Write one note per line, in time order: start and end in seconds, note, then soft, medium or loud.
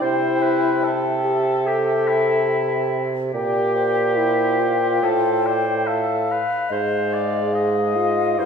0.00 3.30 C3 medium
0.00 1.08 E4 medium
0.00 0.40 C5 medium
0.00 0.44 C5 medium
0.00 3.02 G5 medium
0.41 0.85 B4 soft
0.41 0.85 C5 medium
0.83 1.68 A4 medium
0.83 3.06 E5 medium
1.25 1.68 G4 medium
1.67 2.09 G4 soft
1.67 3.06 A4 medium
2.08 3.06 E4 medium
3.33 4.99 A#2 medium
3.33 4.18 G4 medium
3.33 5.05 G4 medium
3.33 3.77 D5 medium
3.33 4.13 G5 soft
3.75 5.01 C5 medium
4.16 4.61 E4 medium
4.16 5.83 G5 medium
4.60 5.87 F4 medium
5.02 6.41 A2 medium
5.02 5.48 A4 soft
5.02 5.47 C5 medium
5.45 5.88 C5 medium
5.45 5.88 D5 soft
5.87 6.32 A4 soft
5.87 6.31 E5 medium
5.87 6.71 F5 soft
6.30 6.71 B4 medium
6.30 7.55 F5 soft
6.69 8.35 G#2 medium
6.69 7.97 G#3 medium
6.69 7.15 C5 medium
6.69 7.54 D#5 soft
7.13 7.54 D5 soft
7.52 8.39 D#5 soft
7.52 8.40 D#5 medium
7.52 8.46 F5 medium
7.96 8.40 F4 medium
8.38 8.46 G2 medium
8.38 8.46 E4 medium
8.38 8.46 C5 medium
8.38 8.46 C5 soft